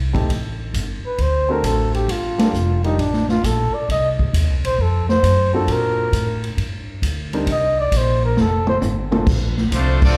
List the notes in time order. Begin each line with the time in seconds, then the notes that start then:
Already playing: C2
0.13 A3 C4 D#4 G4 A4, kick, ride
0.29 A1, kick, ride
0.74 G1, kick, hi-hat pedal, ride
1.04 B4, muted upright bass stroke
1.18 D2 C5, kick, ride
1.48 A3 C4 D4 F#4 A4 A#4
1.63 A1 A4, kick, hi-hat pedal, ride
1.94 G4, ride
2.08 G1 F4, kick, ride
2.38 G3 A#3 D4 F4 A4, snare, ride
2.53 F1, kick, hi-hat pedal
2.84 G3 A#3 D4 D#4 F4 G4, ride
2.98 A1 D4, kick, ride
3.13 snare
3.29 F4, snare
3.44 A#1 A4, kick, hi-hat pedal, ride
3.74 D5, muted upright bass stroke
3.89 C2 D#5, kick, ride
4.19 kick
4.33 D#2, kick, hi-hat pedal, ride
4.50 C2
4.64 A#1 C5, ride
4.78 F2 A4, kick
5.09 C5, snare
5.23 F#2, kick, hi-hat pedal, ride
5.53 A#3 C4 D4 F4 F#4 A4
5.68 A#2 A#4, kick, ride
6.13 A2, kick, hi-hat pedal, ride
6.44 ride
6.57 G2, kick, ride
7.02 D2, kick, hi-hat pedal, ride
7.33 G3 C4 D4 D#4 A#4, ride
7.47 C2, kick, ride
7.51 D#5
7.80 D5
7.91 A#1, kick, hi-hat pedal, ride
7.97 C5
8.24 A#4
8.37 F1, snare
8.41 A4
8.67 C5, mid tom
8.82 G1, hi-hat pedal, mid tom
9.11 A#3 C4 D4 F4 A4, mid tom
9.26 A#1, kick, crash
9.58 snare
9.72 C2 F3 A3 C4 D4 F4 C5, kick, hi-hat pedal, ride
10.02 F3 A3 C4 D4 F4 A4 D5, kick, crash